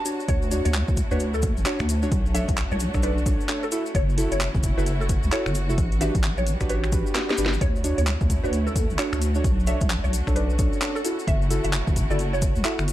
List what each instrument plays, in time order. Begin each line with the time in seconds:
Already playing: violin section G3 B3 D4 F#4, synth pluck A5
0.05 synth stab D4 F#4 C#5, closed hi-hat, cabasa
0.20 cabasa
0.28 wobble bass D2, violin section A3 C#4 E4, synth pluck C#5, kick, closed hi-hat, cabasa
0.42 cabasa
0.51 synth stab D4 F#4 C#5, closed hi-hat, cabasa
0.65 wobble bass D2, synth pluck C#5, closed hi-hat, cabasa
0.73 clap, closed hi-hat, cabasa
0.88 wobble bass D2, kick, cabasa
0.97 kick, closed hi-hat, cabasa
1.11 wobble bass D2, synth stab D4 F#4 C#5, synth pluck B4, cabasa
1.20 closed hi-hat, cabasa
1.34 synth pluck A4, cabasa
1.42 kick, closed hi-hat, cabasa
1.57 wobble bass A1, cabasa
1.65 synth stab D4 F#4 C#5, synth pluck C#5, clap, closed hi-hat, cabasa
1.79 wobble bass D2, finger snap, cabasa
1.89 closed hi-hat, cabasa
2.03 synth stab D4 F#4 C#5, cabasa
2.12 wobble bass B1, violin section D4 F#4, kick, closed hi-hat, cabasa
2.26 cabasa
2.34 synth stab D4 A4 C#5, synth pluck E5, closed hi-hat, cabasa
2.48 wobble bass B1, kick, closed hi-hat, cabasa
2.57 clap, closed hi-hat, cabasa
2.71 wobble bass B1, synth pluck C#5, cabasa
2.80 closed hi-hat, cabasa
2.94 wobble bass B1, synth stab D4 A4 C#5, finger snap, kick, cabasa
3.03 synth stab D4 A4 D5, synth pluck B4, closed hi-hat, cabasa
3.18 cabasa
3.26 synth stab D4 A4 C#5, kick, closed hi-hat, cabasa
3.40 cabasa
3.49 synth stab D4 A4 C#5, clap, closed hi-hat, cabasa
3.63 synth pluck A4, cabasa
3.72 violin section C#4 E4 F#4, synth stab E4 F#4 A4, closed hi-hat, cabasa
3.86 cabasa
3.95 wobble bass F#1, synth pluck C#5, kick, closed hi-hat, cabasa
4.09 cabasa
4.18 synth stab E4 F#4 A4, closed hi-hat, cabasa
4.32 wobble bass F#1, synth pluck C#5, closed hi-hat, cabasa
4.41 clap, closed hi-hat, cabasa
4.55 wobble bass F#1, kick, cabasa
4.63 kick, closed hi-hat, cabasa
4.77 wobble bass F#1, synth stab E4 F#4 A4, synth pluck B4, cabasa
4.86 closed hi-hat, cabasa
5.01 synth pluck A4, cabasa
5.09 kick, closed hi-hat, cabasa
5.23 wobble bass C#2, cabasa
5.32 synth stab E4 F#4 A4, synth pluck C#5, clap, closed hi-hat, cabasa
5.46 wobble bass F#1, finger snap, cabasa
5.55 closed hi-hat, cabasa
5.69 synth stab E4 F#4 A4, cabasa
5.77 wobble bass A1, violin section G3 B3 D4, kick, closed hi-hat, cabasa
5.92 closed hi-hat, cabasa
6.01 synth stab D4 F#4 G4 B4, synth pluck E5, finger snap, closed hi-hat, cabasa
6.15 wobble bass A1, kick, closed hi-hat, cabasa
6.23 clap, closed hi-hat, cabasa
6.38 wobble bass A1, synth pluck C#5, cabasa
6.47 closed hi-hat, cabasa
6.61 wobble bass A1, synth stab D4 F#4 G4 B4, finger snap, kick, closed hi-hat, cabasa
6.69 synth stab D4 F#4 G4 C#5, synth pluck B4, closed hi-hat, cabasa
6.84 finger snap, cabasa
6.92 synth stab D4 F#4 G4 B4, kick, closed hi-hat, cabasa
7.07 cabasa
7.15 synth stab D4 F#4 G4 B4, snare, clap, closed hi-hat, cabasa
7.29 synth pluck G4, snare, cabasa
7.38 wobble bass G1, synth stab D4 F#4 G4 B4, closed hi-hat, cabasa
7.46 snare
7.53 cabasa
7.61 wobble bass D2, violin section A3 C#4 E4 F#4, synth pluck C#5, kick, closed hi-hat, cabasa
7.76 cabasa
7.84 synth stab D4 F#4 C#5, closed hi-hat, cabasa
7.98 wobble bass D2, synth pluck C#5, closed hi-hat, cabasa
8.07 clap, closed hi-hat, cabasa
8.21 wobble bass D2, kick, cabasa
8.30 kick, closed hi-hat, cabasa
8.44 wobble bass D2, synth stab D4 F#4 C#5, synth pluck B4, cabasa
8.53 closed hi-hat, cabasa
8.67 synth pluck A4, cabasa
8.76 kick, closed hi-hat, cabasa
8.90 wobble bass A1, cabasa
8.98 synth stab D4 F#4 C#5, synth pluck C#5, clap, closed hi-hat, cabasa
9.13 wobble bass D2, finger snap, cabasa
9.22 closed hi-hat, cabasa
9.35 synth stab D4 F#4 C#5, cabasa
9.44 wobble bass B1, violin section C#4 D4, kick, closed hi-hat, cabasa
9.60 cabasa
9.67 synth stab D4 A4 C#5, synth pluck E5, closed hi-hat, cabasa
9.81 wobble bass B1, kick, closed hi-hat, cabasa
9.90 clap, closed hi-hat, cabasa
10.04 wobble bass B1, synth pluck C#5, cabasa
10.13 closed hi-hat, cabasa
10.27 wobble bass B1, synth stab D4 A4 C#5, finger snap, kick, cabasa
10.36 synth stab D4 A4 D5, synth pluck B4, closed hi-hat, cabasa
10.50 cabasa
10.59 synth stab D4 A4 C#5, kick, closed hi-hat, cabasa
10.73 cabasa
10.82 synth stab D4 A4 C#5, clap, closed hi-hat, cabasa
10.95 synth pluck A4, cabasa
11.04 violin section A3 E4, synth stab E4 F#4 A4, closed hi-hat, cabasa
11.19 cabasa
11.27 wobble bass F#1, synth pluck E5, kick, closed hi-hat, cabasa
11.42 cabasa
11.50 synth stab E4 F#4 A4, closed hi-hat, cabasa
11.64 wobble bass F#1, synth pluck E5, closed hi-hat, cabasa
11.73 clap, closed hi-hat, cabasa
11.87 wobble bass F#1, kick, cabasa
11.96 kick, closed hi-hat, cabasa
12.10 wobble bass F#1, synth stab E4 F#4 A4, synth pluck D5, cabasa
12.19 closed hi-hat, cabasa
12.33 synth pluck C#5, cabasa
12.42 kick, closed hi-hat, cabasa
12.56 wobble bass C#2, cabasa
12.65 synth stab E4 F#4 A4, synth pluck E5, clap, closed hi-hat, cabasa
12.79 wobble bass F#1, finger snap, cabasa
12.88 closed hi-hat, cabasa